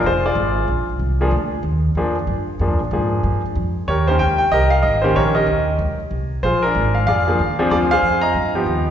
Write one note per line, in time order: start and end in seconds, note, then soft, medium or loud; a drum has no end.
0.03 0.35 F1 medium
0.03 0.24 F4 medium
0.03 0.24 G#4 medium
0.03 0.24 C5 medium
0.26 0.85 F4 medium
0.26 0.85 G#4 medium
0.26 0.66 D5 medium
0.35 0.67 G#1 medium
0.68 0.99 A#1 medium
0.99 1.30 C2 medium
1.21 1.31 F3 medium
1.21 1.32 A#3 medium
1.21 1.32 D4 medium
1.21 1.32 G#4 medium
1.31 1.62 D2 medium
1.63 1.94 D#2 medium
1.95 2.27 F2 medium
1.95 2.14 F3 medium
1.95 2.14 A#3 medium
1.95 2.14 D4 medium
1.95 2.15 G#4 medium
2.27 2.59 G2 medium
2.59 2.70 F2 medium
2.59 2.78 F3 medium
2.59 2.78 A#3 medium
2.59 2.78 D4 medium
2.59 2.78 G#4 medium
2.70 2.79 D2 medium
2.80 2.90 A#1 medium
2.91 3.22 G#2 medium
2.91 3.40 F3 medium
2.91 3.40 A#3 medium
2.91 3.41 D4 soft
2.91 3.40 G#4 medium
3.23 3.55 G2 medium
3.55 3.87 F2 medium
3.88 4.19 D#2 medium
3.88 4.08 G4 medium
3.88 4.49 A#4 medium
3.88 4.06 C#5 medium
4.08 4.19 D#3 medium
4.08 4.19 A#3 medium
4.08 4.19 C#4 medium
4.08 4.20 G4 medium
4.08 4.19 C5 medium
4.19 4.51 C#2 medium
4.19 4.37 G5 medium
4.38 4.52 G5 medium
4.52 4.82 C2 medium
4.52 5.03 G4 medium
4.52 5.13 A#4 medium
4.52 4.72 D#5 loud
4.70 4.82 F5 medium
4.83 5.14 G#1 medium
4.83 5.01 D#5 medium
5.02 5.46 D#3 medium
5.02 5.46 A#3 medium
5.02 5.46 C#4 medium
5.02 5.16 G4 medium
5.02 5.15 C5 medium
5.15 5.46 A#1 medium
5.15 5.34 G4 medium
5.15 5.34 A#4 medium
5.15 5.34 C#5 medium
5.35 5.95 G4 medium
5.35 5.95 A#4 medium
5.35 5.76 D#5 medium
5.47 5.78 D#2 medium
5.79 5.97 C#2 medium
5.98 muted upright bass stroke soft
6.11 6.42 C2 medium
6.43 6.74 A#1 medium
6.43 6.63 F4 medium
6.43 7.04 G#4 medium
6.43 6.61 C5 medium
6.63 7.24 D4 medium
6.63 7.24 F4 medium
6.63 6.96 A#4 medium
6.75 7.06 G#1 medium
6.95 7.05 F5 medium
7.07 7.38 F2 medium
7.07 7.27 G#4 medium
7.07 7.68 D5 medium
7.07 7.55 F5 loud
7.27 7.38 F3 medium
7.27 7.38 A#3 medium
7.27 7.39 D4 medium
7.27 7.39 G#4 medium
7.39 7.57 D#2 medium
7.59 7.70 F3 medium
7.59 7.70 C4 medium
7.59 7.70 D4 medium
7.59 7.70 G#4 medium
7.59 muted upright bass stroke soft
7.70 8.01 D2 medium
7.70 7.89 F3 medium
7.70 7.89 C4 medium
7.70 7.89 D4 medium
7.70 8.32 F4 medium
7.70 7.89 G#4 medium
7.70 7.76 D5 medium
7.91 8.33 G#4 medium
7.91 8.33 C5 medium
7.91 8.21 F5 loud
8.02 8.33 F2 medium
8.22 8.83 D#5 medium
8.22 8.83 F5 medium
8.22 8.82 A#5 medium
8.34 8.66 G2 medium
8.55 8.90 F3 medium
8.55 8.90 B3 medium
8.55 8.90 D#4 medium
8.55 8.90 G4 medium
8.66 8.90 D#2 medium